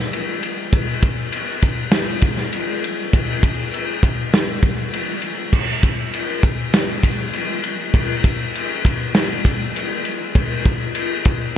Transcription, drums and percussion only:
0.12 ride, tambourine
0.43 ride
0.73 kick, ride
1.03 kick, ride
1.32 ride, tambourine
1.62 kick, ride
1.92 snare, ride
2.21 kick, ride
2.37 snare
2.52 ride, tambourine
2.84 ride
3.13 kick, ride
3.43 kick, ride
3.71 ride, tambourine
4.03 kick, ride
4.34 snare, ride
4.63 kick, ride
4.91 ride, tambourine
5.22 ride
5.53 kick, crash
5.83 kick, ride
6.12 ride, tambourine
6.43 kick, ride
6.74 snare, ride
7.03 kick, ride
7.33 ride, tambourine
7.64 ride
7.94 kick, ride
8.24 kick, ride
8.54 ride, tambourine
8.85 kick, ride
9.15 snare, ride
9.45 kick, ride
9.76 ride, tambourine
10.05 ride
10.35 kick, ride
10.65 kick, ride
10.95 ride, tambourine
11.25 kick, ride

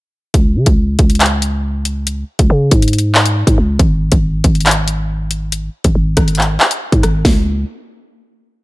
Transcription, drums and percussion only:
0.34 kick, closed hi-hat
0.66 kick, closed hi-hat
0.99 kick, closed hi-hat
1.10 closed hi-hat
1.15 closed hi-hat
1.20 clap, closed hi-hat
1.26 closed hi-hat
1.42 closed hi-hat
1.85 closed hi-hat
2.07 closed hi-hat
2.39 kick, closed hi-hat
2.71 kick, closed hi-hat
2.82 closed hi-hat
2.88 closed hi-hat
2.93 closed hi-hat
2.98 closed hi-hat
3.15 clap
3.26 closed hi-hat
3.47 kick, closed hi-hat
3.79 kick, closed hi-hat
4.12 kick, closed hi-hat
4.44 kick, closed hi-hat
4.55 closed hi-hat
4.61 closed hi-hat
4.66 clap, closed hi-hat
4.71 closed hi-hat
4.88 closed hi-hat
5.31 closed hi-hat
5.52 closed hi-hat
5.84 kick, closed hi-hat
6.17 kick, cross-stick, closed hi-hat
6.28 closed hi-hat
6.35 clap, closed hi-hat
6.42 closed hi-hat
6.60 clap
6.71 closed hi-hat
6.92 kick, closed hi-hat
7.03 cross-stick, closed hi-hat
7.25 kick, snare, open hi-hat

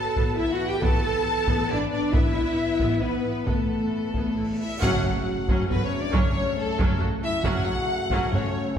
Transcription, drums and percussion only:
0.17 taiko
0.82 taiko
1.48 taiko
2.13 taiko
2.80 taiko
3.47 taiko
4.14 taiko
4.82 taiko
5.48 taiko
5.71 taiko low-mid
6.14 taiko
6.79 taiko
7.02 taiko low-mid
7.45 taiko
8.11 taiko
8.33 taiko low-mid

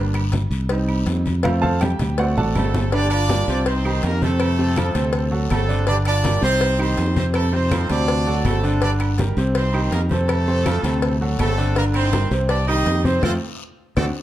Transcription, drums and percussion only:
0.14 cowbell, high conga, low agogo, claves
0.32 cowbell, high conga, low timbale, short guiro
0.51 high conga, low agogo, short guiro
0.69 cowbell, high conga, low agogo, long guiro
0.88 high conga, low agogo, claves
1.06 cowbell, high conga, low timbale, short guiro
1.26 high conga, low agogo, short guiro
1.43 cowbell, high conga, low agogo, long guiro, claves
1.64 high conga
1.81 cowbell, low conga, low timbale, low agogo, short guiro, claves
1.99 cowbell, low conga, low agogo, short guiro
2.18 cowbell, high timbale, long guiro
2.37 low conga, high timbale
2.55 cowbell, low conga, low timbale, low agogo, short guiro, claves
2.74 low conga, low timbale, short guiro
2.92 cowbell, high conga, low agogo, long guiro
3.11 cowbell, high conga, low agogo, claves
3.29 cowbell, high conga, low timbale, short guiro
3.48 high conga, low agogo, short guiro
3.66 cowbell, high conga, low agogo, long guiro
3.85 high conga, low agogo, claves
4.03 cowbell, high conga, low timbale, short guiro
4.22 high conga, low agogo, short guiro
4.40 cowbell, high conga, low agogo, long guiro, claves
4.59 high conga
4.76 cowbell, high conga, low timbale, low agogo, short guiro, claves
4.95 cowbell, high conga, low agogo, short guiro
5.13 cowbell, high conga, long guiro
5.33 high conga
5.50 cowbell, high conga, low timbale, low agogo, short guiro, claves
5.69 high conga, short guiro
5.87 cowbell, high conga, low agogo, long guiro
6.05 cowbell, high conga, low agogo, claves
6.24 cowbell, high conga, low timbale, short guiro
6.43 high conga, low agogo, short guiro
6.61 cowbell, high conga, low agogo, long guiro
6.80 high conga, low agogo, claves
6.97 cowbell, high conga, low timbale, short guiro
7.16 high conga, low agogo, short guiro
7.34 cowbell, high conga, low agogo, long guiro, claves
7.53 high conga
7.71 cowbell, high conga, low timbale, low agogo, short guiro, claves
7.89 cowbell, high conga, low agogo, short guiro
8.08 cowbell, high conga, long guiro
8.27 high conga
8.45 cowbell, high conga, low timbale, low agogo, short guiro, claves
8.64 high conga, short guiro
8.82 cowbell, high conga, low agogo, long guiro
9.00 cowbell, high conga, low agogo, claves
9.18 cowbell, high conga, low timbale, short guiro
9.37 high conga, low agogo, short guiro
9.55 cowbell, high conga, low agogo, long guiro
9.73 high conga, low agogo, claves
9.91 cowbell, high conga, low timbale, short guiro
10.09 high conga, low agogo, short guiro
10.28 cowbell, high conga, low agogo, long guiro, claves
10.47 high conga
10.65 cowbell, high conga, low timbale, low agogo, short guiro, claves
10.84 cowbell, high conga, low agogo, short guiro
11.02 cowbell, high conga, long guiro
11.21 high conga
11.39 cowbell, high conga, low timbale, low agogo, short guiro, claves
11.58 high conga, short guiro
11.76 cowbell, high conga, low agogo, long guiro
11.94 cowbell, high conga, low agogo, claves
12.13 cowbell, high conga, low timbale, short guiro
12.31 high conga, low agogo, short guiro
12.49 cowbell, high conga, low agogo, long guiro
12.68 high conga, low agogo, claves
12.86 cowbell, high conga, low timbale, short guiro
13.05 high conga, low agogo, short guiro
13.23 cowbell, high conga, high timbale, long guiro, claves
13.97 cowbell, high conga, high timbale, long guiro, claves

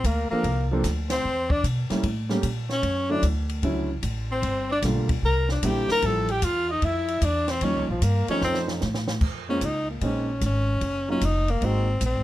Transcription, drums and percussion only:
0.04 kick, hi-hat pedal, ride
0.44 kick, ride
0.84 kick, snare, hi-hat pedal, ride
1.10 snare, ride
1.50 kick
1.64 kick, hi-hat pedal, ride
1.90 snare, ride
2.03 kick, ride
2.29 snare
2.43 kick, hi-hat pedal, ride
2.69 snare
2.83 kick, ride
3.23 kick, hi-hat pedal, ride
3.49 ride
3.63 kick, ride
4.03 kick, hi-hat pedal, ride
4.43 kick, ride
4.82 kick, snare, hi-hat pedal, ride
5.09 kick, ride
5.23 kick
5.49 snare
5.63 kick, hi-hat pedal, ride
5.89 snare
6.02 kick, ride
6.28 ride
6.42 kick, hi-hat pedal, ride
6.82 kick, ride
7.08 ride
7.22 kick, hi-hat pedal, ride
7.48 snare, ride
7.61 kick, ride
8.02 kick, hi-hat pedal, ride
8.28 ride
8.41 snare
8.54 snare
8.68 snare
8.81 snare, hi-hat pedal
8.94 snare
9.08 snare
9.21 kick, crash
9.61 kick, hi-hat pedal, ride
10.01 kick, ride
10.41 kick, hi-hat pedal, ride
10.81 kick, ride
11.21 kick, hi-hat pedal, ride
11.48 ride
11.61 kick, ride
12.01 kick, hi-hat pedal, ride

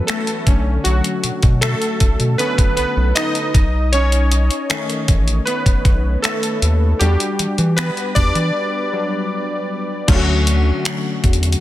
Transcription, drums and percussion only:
0.08 finger snap, closed hi-hat
0.27 closed hi-hat
0.47 kick, closed hi-hat
0.85 closed hi-hat
1.04 closed hi-hat
1.24 closed hi-hat
1.43 kick, closed hi-hat
1.62 finger snap, closed hi-hat
1.82 closed hi-hat
2.00 kick, closed hi-hat
2.20 closed hi-hat
2.39 closed hi-hat
2.58 kick, closed hi-hat
2.77 closed hi-hat
3.16 finger snap, closed hi-hat
3.35 closed hi-hat
3.54 kick, closed hi-hat
3.93 closed hi-hat
4.12 closed hi-hat
4.32 closed hi-hat
4.51 closed hi-hat
4.70 finger snap, closed hi-hat
4.90 closed hi-hat
5.08 kick, closed hi-hat
5.28 closed hi-hat
5.47 closed hi-hat
5.66 kick, closed hi-hat
5.85 kick, closed hi-hat
6.24 finger snap, closed hi-hat
6.43 closed hi-hat
6.62 closed hi-hat
7.01 closed hi-hat
7.20 closed hi-hat
7.39 closed hi-hat
7.58 closed hi-hat
7.78 finger snap, closed hi-hat
7.97 closed hi-hat
8.16 kick, closed hi-hat
8.35 closed hi-hat
10.08 kick, closed hi-hat, crash
10.47 closed hi-hat
10.85 finger snap, closed hi-hat
11.24 kick, closed hi-hat
11.33 closed hi-hat
11.43 closed hi-hat
11.52 closed hi-hat

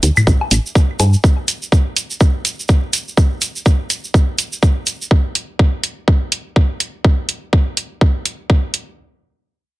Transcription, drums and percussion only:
0.03 closed hi-hat, shaker
0.17 mid tom, high woodblock, shaker
0.27 kick, shaker
0.41 low woodblock
0.51 closed hi-hat, shaker
0.66 shaker
0.75 kick, shaker
1.00 closed hi-hat, low woodblock, shaker
1.13 shaker
1.24 kick, shaker
1.48 closed hi-hat, shaker
1.62 shaker
1.72 kick, shaker
1.96 closed hi-hat, shaker
2.10 shaker
2.20 kick, shaker
2.45 closed hi-hat, shaker
2.59 shaker
2.68 kick, shaker
2.93 closed hi-hat, shaker
3.08 shaker
3.17 kick, shaker
3.41 closed hi-hat, shaker
3.56 shaker
3.66 kick, shaker
3.90 closed hi-hat, shaker
4.04 shaker
4.14 kick, shaker
4.38 closed hi-hat, shaker
4.53 shaker
4.63 kick, shaker
4.86 closed hi-hat, shaker
5.02 shaker
5.11 kick
5.35 closed hi-hat
5.59 kick
5.84 closed hi-hat
6.08 kick
6.32 closed hi-hat
6.56 kick
6.80 closed hi-hat
7.04 kick
7.29 closed hi-hat
7.53 kick
7.77 closed hi-hat
8.01 kick
8.25 closed hi-hat
8.50 kick
8.74 closed hi-hat

